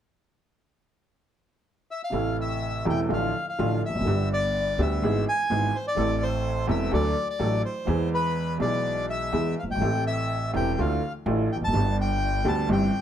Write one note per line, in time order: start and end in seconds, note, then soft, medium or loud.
1.91 2.02 E5 medium
2.04 2.37 F5 medium
2.10 2.83 A1 medium
2.10 2.83 A2 medium
2.10 2.82 C3 medium
2.10 2.82 E3 medium
2.10 2.83 A3 medium
2.10 2.84 E4 medium
2.41 2.85 E5 medium
2.85 3.07 E1 medium
2.85 3.07 E2 medium
2.85 3.06 C3 medium
2.85 3.06 E3 medium
2.85 3.07 A3 medium
2.85 3.07 E4 medium
2.90 3.00 G5 medium
3.09 3.31 A1 medium
3.09 3.30 A2 medium
3.09 3.30 D3 medium
3.09 3.31 F3 medium
3.09 3.31 A3 medium
3.09 3.31 F4 medium
3.13 3.46 F5 medium
3.49 3.82 F5 medium
3.58 3.79 A1 medium
3.58 3.80 A1 medium
3.58 3.79 A2 medium
3.58 3.79 D3 medium
3.58 3.79 F3 medium
3.58 3.80 A3 medium
3.58 3.80 F4 medium
3.86 3.95 E2 soft
3.86 4.29 E5 medium
3.90 3.94 E1 soft
3.95 4.00 F1 medium
3.95 4.01 F2 medium
4.00 4.06 F#1 medium
4.00 4.07 F#2 medium
4.05 4.75 G1 medium
4.05 4.75 G2 medium
4.05 4.74 D3 medium
4.05 4.75 G3 medium
4.05 4.76 B3 medium
4.05 4.76 G4 medium
4.33 4.81 D5 medium
4.78 4.99 D2 medium
4.78 4.99 D3 medium
4.78 4.99 G3 medium
4.78 4.99 B3 medium
4.78 4.99 G4 medium
4.78 5.25 E5 medium
5.02 5.23 G#1 medium
5.02 5.23 G#2 medium
5.02 5.23 E3 medium
5.02 5.23 G#3 medium
5.02 5.23 B3 medium
5.02 5.23 G#4 medium
5.29 5.77 G#5 medium
5.50 5.70 G#1 medium
5.50 5.70 G#2 medium
5.50 5.70 E3 medium
5.50 5.70 G#3 medium
5.50 5.70 B3 medium
5.50 5.70 G#4 medium
5.75 5.86 C5 medium
5.88 6.23 D5 medium
5.95 6.65 A1 medium
5.95 6.65 A2 medium
5.95 6.64 E3 medium
5.95 6.65 A3 medium
5.95 6.65 C4 medium
5.99 6.66 A4 medium
6.23 6.66 C5 medium
6.67 6.88 E1 medium
6.67 6.89 E1 medium
6.67 6.88 E2 medium
6.67 6.88 E3 medium
6.67 6.88 A3 medium
6.67 6.88 C4 medium
6.67 6.88 A4 medium
6.67 6.92 E5 medium
6.91 7.12 D2 medium
6.91 7.13 D2 medium
6.91 7.12 D3 medium
6.91 7.12 F#3 medium
6.91 7.12 A3 medium
6.91 7.12 D4 medium
6.91 7.12 A4 medium
6.91 7.28 D5 medium
7.30 7.62 D5 medium
7.39 7.60 A1 medium
7.39 7.60 A2 medium
7.39 7.60 F#3 medium
7.39 7.60 A3 medium
7.39 7.60 D4 medium
7.39 7.60 A4 medium
7.65 8.09 C5 medium
7.87 8.56 E2 medium
7.87 8.56 E3 medium
7.87 8.55 G#3 medium
7.87 8.56 B3 medium
7.87 8.57 G#4 medium
8.14 8.58 B4 medium
8.58 9.29 B1 medium
8.58 9.29 B2 medium
8.58 9.28 E3 medium
8.58 9.29 G#3 medium
8.58 9.29 B3 medium
8.58 9.06 D5 medium
8.62 9.30 G#4 medium
9.10 9.55 E5 medium
9.32 9.53 E2 medium
9.32 9.53 E3 medium
9.32 9.53 G#3 medium
9.32 9.53 B3 medium
9.32 9.53 G#4 medium
9.59 9.69 F#1 soft
9.59 9.64 F5 medium
9.64 9.70 F#1 soft
9.70 9.75 G1 soft
9.70 9.76 G1 soft
9.70 10.04 G5 medium
9.75 9.81 G#1 medium
9.79 10.51 A1 medium
9.79 10.51 A2 medium
9.79 10.50 E3 medium
9.79 10.50 A3 medium
9.79 10.51 C4 medium
9.84 10.52 G4 medium
10.07 10.51 E5 medium
10.53 10.74 E1 medium
10.53 10.74 E2 medium
10.53 10.74 E3 medium
10.53 10.74 A3 medium
10.53 10.74 C4 medium
10.53 10.74 G4 medium
10.53 10.80 G5 medium
10.78 10.99 D2 medium
10.78 10.99 D3 medium
10.78 10.99 E3 medium
10.78 10.99 A3 medium
10.78 10.99 D4 medium
10.78 10.99 F4 medium
10.78 11.13 F5 medium
11.26 11.46 A1 medium
11.26 11.46 A2 medium
11.26 11.46 E3 medium
11.26 11.46 A3 medium
11.26 11.47 D4 medium
11.26 11.46 F4 medium
11.52 11.62 E2 soft
11.52 11.57 G5 medium
11.56 11.61 E1 soft
11.61 11.66 F1 medium
11.61 11.68 F2 medium
11.61 11.96 A5 medium
11.67 11.73 F#1 medium
11.67 11.74 F#2 medium
11.73 12.41 G1 medium
11.73 12.42 G1 medium
11.73 12.42 G2 medium
11.73 12.41 D3 medium
11.73 12.42 G3 medium
11.73 12.42 B3 medium
11.73 12.43 G4 medium
12.01 12.48 G5 medium
12.45 12.65 D2 medium
12.45 12.65 D3 medium
12.45 12.65 G3 medium
12.45 12.65 B3 medium
12.45 12.65 G4 medium
12.45 12.69 A5 medium
12.69 12.89 G1 medium
12.69 12.89 G2 medium
12.69 12.89 E3 medium
12.69 12.89 G3 medium
12.69 12.89 C4 medium
12.69 12.89 G4 medium
12.69 13.01 G5 medium